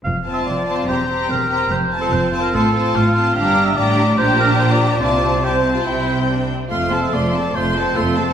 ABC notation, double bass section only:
X:1
M:4/4
L:1/8
Q:1/4=144
K:F
V:1 name="Double bass section" clef=bass
F,,,2 F,,,2 E,,,2 E,,,2 | F,,,2 F,,,2 A,,,2 A,,,2 | G,,,2 A,,,2 B,,,4 | C,,4 C,,3 z |
F,,,2 F,,,2 F,,,2 F,,,2 |]